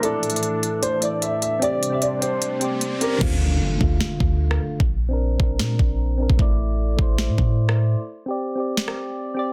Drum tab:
CC |------------------------------------------------|------------------------------------------------|x-----------------------------------------------|------------------------------------------------|
HH |x-----x-x-x-x-----x-----x-----x-----x-----x-----|x-----x-----x-----x-----x-----x-----x-----x-----|------------------------------------------------|------------------------------------------------|
SD |------------------------------------------------|------------------------------------------------|------------------------o--------------r--------|------------------------o-----------------------|
BD |------------------------------------------------|------------------------------------------------|o-----------------o-----------o-----------------|o-----------------o-----------o--------------o--|

CC |------------------------------------------------|------------------------------------------------|
HH |------------------------------------------------|------------------------------------------------|
SD |------------------------o--------------r--------|------------------------o--r--------------------|
BD |o-----------------o-----------o-----------------|------------------------------------------------|